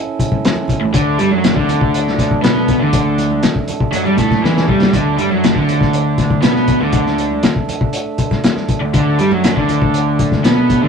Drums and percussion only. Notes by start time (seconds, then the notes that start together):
0.19 kick, closed hi-hat
0.32 kick, high conga
0.45 snare, closed hi-hat
0.56 high conga
0.68 kick, closed hi-hat, low conga
0.94 kick, closed hi-hat
1.19 closed hi-hat
1.31 high conga
1.44 snare, closed hi-hat
1.56 kick
1.69 closed hi-hat, low conga
1.81 kick
1.94 closed hi-hat
2.08 snare
2.19 kick, snare, closed hi-hat
2.31 kick, high conga
2.44 snare, closed hi-hat
2.56 high conga
2.68 kick, closed hi-hat, low conga
2.93 kick, closed hi-hat
3.18 closed hi-hat, high conga
3.30 high conga
3.43 snare, closed hi-hat
3.56 kick
3.68 closed hi-hat, low conga
3.80 kick
3.93 closed hi-hat
4.06 high conga
4.18 kick, snare, closed hi-hat
4.31 kick, snare, high conga, low conga
4.44 snare
4.56 snare, high conga
4.68 kick, low conga
4.82 snare
4.93 kick, closed hi-hat
5.18 closed hi-hat
5.31 high conga
5.44 snare, closed hi-hat
5.56 kick
5.69 closed hi-hat, low conga
5.81 kick, snare
5.93 closed hi-hat
6.18 kick, snare, closed hi-hat
6.30 kick, high conga
6.42 snare, closed hi-hat
6.56 snare, high conga
6.68 kick, closed hi-hat, low conga
6.93 kick, closed hi-hat
7.07 snare
7.18 closed hi-hat
7.31 high conga
7.43 snare, closed hi-hat
7.56 kick
7.69 closed hi-hat, low conga
7.81 kick
7.93 closed hi-hat
8.18 kick, closed hi-hat
8.31 kick, snare, high conga
8.44 snare, closed hi-hat
8.56 snare, high conga
8.69 kick, closed hi-hat, low conga
8.94 kick, closed hi-hat
9.19 closed hi-hat
9.31 high conga
9.44 snare, closed hi-hat
9.57 kick
9.69 closed hi-hat, low conga
9.82 kick
9.94 closed hi-hat
10.19 kick, closed hi-hat
10.32 kick, snare, high conga
10.45 snare, closed hi-hat
10.57 high conga
10.69 kick, closed hi-hat, low conga